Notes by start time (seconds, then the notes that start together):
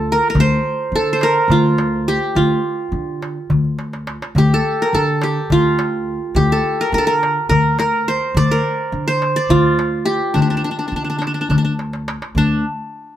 Already playing: D2 F4 A4
0.12 A#4
0.30 A#4
0.35 D2, darbuka dum
0.40 C5
0.92 D3 A4
1.13 C5
1.21 A#4, darbuka tek
1.48 D2 F4, darbuka dum
1.78 darbuka tek
2.08 G4
2.35 D2 F4, darbuka dum
2.92 D3, darbuka ka
3.22 darbuka tek
3.50 D2, darbuka dum
3.65 darbuka ka
3.79 darbuka tek
3.93 darbuka ka
4.07 darbuka tek
4.22 darbuka ka
4.35 D2 G4, darbuka dum
4.54 A4
4.82 A#4
4.93 D3 A4
5.22 G4, darbuka tek
5.50 D2 F4, darbuka dum
5.79 darbuka tek
6.35 D2 G4, darbuka dum
6.52 A4
6.81 A#4
6.92 D3 A#4
6.98 A4
7.07 A#4
7.23 darbuka tek
7.49 D2 A#4, darbuka dum
7.79 A#4, darbuka tek
8.08 C5
8.34 D2 D5, darbuka dum
8.51 A#4
8.92 D3
9.08 C5
9.22 darbuka tek
9.36 D5
9.49 D2 F4, darbuka dum
9.79 darbuka tek
10.05 G4
10.34 D2 D4, darbuka dum
10.42 D4
10.50 D4
10.57 D4
10.64 D4
10.71 D4
10.79 D4
10.88 D4
10.92 D3, darbuka ka
10.96 D4
11.04 D4
11.10 D4
11.18 D4, darbuka tek
11.27 D4
11.34 D4
11.41 D4
11.49 D2 D4, darbuka dum
11.58 D4
11.65 D4
11.79 darbuka tek
11.93 darbuka ka
12.08 darbuka tek
12.22 darbuka ka
12.35 D2 D4, darbuka dum